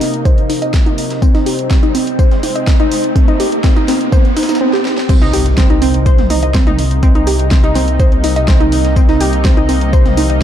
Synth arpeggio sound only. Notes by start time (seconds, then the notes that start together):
0.01 C4
0.25 C5
0.50 D#4
0.62 D#5
0.74 C4
0.86 D#4
1.22 C4
1.35 D#4
1.46 G4
1.71 C4
1.83 D#4
1.95 C4
2.19 C5
2.43 D#4
2.55 D#5
2.67 C4
2.80 D#4
3.16 C4
3.28 D#4
3.40 G4
3.64 C4
3.76 D#4
3.88 C4
4.12 C5
4.37 D#4
4.49 D#4
4.61 C4
4.73 G4
5.09 C4
5.22 D#4
5.33 G4
5.58 C4
5.70 D#4
5.82 C4
6.06 C5
6.30 D#4
6.43 D#5
6.54 C4
6.67 D#4
7.03 C4
7.15 D#4
7.27 G4
7.51 C4
7.64 D#4
7.75 C4
7.99 C5
8.24 D#4
8.36 D#5
8.48 C4
8.60 D#4
8.96 C4
9.09 D#4
9.21 G4
9.45 C4
9.57 D#4
9.69 C4
9.93 C5
10.17 D#4
10.30 D#5